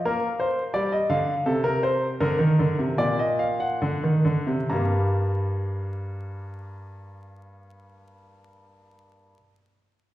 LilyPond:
<<
  \new Staff \with { instrumentName = "Grand piano" } { \time 3/4 \key g \minor \tempo 4 = 66 bes'8 c''8 d''16 ees''16 f''8 a'16 bes'16 c''8 | bes'4 d''16 ees''16 f''16 fis''4~ fis''16 | <g bes bes''>2.~ | <g bes bes''>2. | }
  \new Staff \with { instrumentName = "Grand piano" } { \clef bass \time 3/4 \key g \minor bes4 g8 d8 c4 | d16 ees16 d16 c16 bes,4 d16 ees16 d16 c16 | g,2.~ | g,2. | }
>>